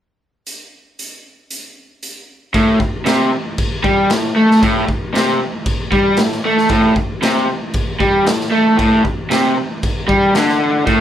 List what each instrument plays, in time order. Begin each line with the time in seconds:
0.47 closed hi-hat
0.99 closed hi-hat
1.50 closed hi-hat
2.03 closed hi-hat
2.54 overdriven electric guitar A2, kick, crash
2.80 muted overdriven electric guitar stroke, kick
3.06 overdriven electric guitar C3, snare, crash
3.58 kick, crash
3.84 overdriven electric guitar G3, kick
4.10 overdriven electric guitar A2, snare, crash
4.36 overdriven electric guitar A3
4.51 snare
4.62 overdriven electric guitar A2, kick, crash
4.87 muted overdriven electric guitar stroke, kick
5.14 overdriven electric guitar C3, snare, crash
5.66 kick, crash
5.92 overdriven electric guitar G3, kick
6.17 overdriven electric guitar A2, snare, crash
6.32 snare
6.45 overdriven electric guitar A3
6.58 snare
6.69 overdriven electric guitar A2, kick, crash
6.96 muted overdriven electric guitar stroke, kick
7.22 overdriven electric guitar C3, snare, crash
7.74 kick, crash
8.00 overdriven electric guitar G3, kick
8.25 overdriven electric guitar A2, snare, crash
8.41 snare
8.52 overdriven electric guitar A3
8.78 overdriven electric guitar A2, kick, crash
9.05 muted overdriven electric guitar stroke, kick
9.30 overdriven electric guitar C3, snare, crash
9.83 kick, crash
10.08 overdriven electric guitar G3, kick
10.35 overdriven electric guitar D3, snare, crash
10.49 snare
10.86 overdriven electric guitar A2, kick, crash